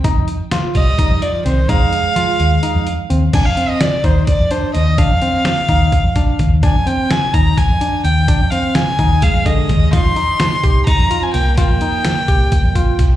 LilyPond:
<<
  \new Staff \with { instrumentName = "Violin" } { \time 7/8 \key f \dorian \tempo 4 = 127 r4. ees''4 d''8 c''8 | f''2~ f''8 r4 | aes''16 f''8 ees''16 d''8 c''8 d''8 c''8 ees''8 | f''2. r8 |
aes''8 g''8 aes''8 bes''8 aes''4 g''8~ | g''8 f''8 aes''4 f''8 ees''4 | c'''2 bes''8. aes''16 g''8 | g''2. r8 | }
  \new Staff \with { instrumentName = "Tine electric piano" } { \time 7/8 \key f \dorian ees'4 f'4 ees'4 c'8 | ees'4 f'4 ees'4 c'8 | d'8 c'4 ees'4 d'4 | d'8 c'4 ees'4 d'4 |
d'8 c'4 ees'4 d'4 | d'8 c'4 ees'4 d4 | f'8 ees'4 g'4 f'4 | f'8 ees'4 g'4 f'4 | }
  \new Staff \with { instrumentName = "Clean electric guitar" } { \clef bass \time 7/8 \key f \dorian r4. g4 f8 ees8 | aes2~ aes8 r4 | r2. r8 | r2. r8 |
r2. r8 | r2 aes8 aes4 | ees'2 ees'8. c'16 bes8 | bes2. r8 | }
  \new Staff \with { instrumentName = "Fingered electric bass" } { \clef bass \time 7/8 \key f \dorian r16 f,8 r16 f16 r16 c,8 r16 f,8 r16 c,8 | f,16 f,8 r16 f16 r16 ees,8 r16 f,8 r16 ees,8 | f,16 f,8 r16 f16 r16 ees,8 r16 f,8 r16 ees,8~ | ees,16 f,8 r16 f16 r16 ees,8 r16 f,8 r16 ees,8~ |
ees,16 f,8 r16 f16 r16 ees,8 r16 f,8 r16 ees,8~ | ees,16 f,8 r16 f16 r16 ees,8 r16 f,8 r16 ees,8 | f,16 f,8 r16 f16 r16 c,8 r16 f,8 r16 c,8~ | c,16 f,8 r16 f16 r16 c,8 r16 f,8 r16 c,8 | }
  \new DrumStaff \with { instrumentName = "Drums" } \drummode { \time 7/8 <hh bd>8 hh8 <hh sn>8 <hh bd>8 <hh bd>8 hh8 hh8 | <hh bd>8 hh8 hh8 hh8 hh8 hh8 hh8 | <cymc hh bd>8 hh8 <hh sn>8 <hh bd>8 <hh bd>8 <hh sn>8 <hh sn>8 | <hh bd>8 hh8 <hh sn>8 <hh bd>8 <hh bd>8 <hh bd>8 <hh bd>8 |
<hh bd>8 hh8 <hh sn>8 <hh bd>8 <hh bd sn>8 hh8 hh8 | <hh bd>8 hh8 <hh sn>8 <hh bd>8 <hh bd>8 <hh bd>8 <hh bd>8 | <hh bd>8 hh8 <hh sn>8 <hh bd>8 <hh bd sn>8 hh8 <hh sn>8 | <hh bd>8 hh8 <hh sn>8 <hh bd>8 <hh bd>8 <hh bd>8 <hh bd sn>8 | }
>>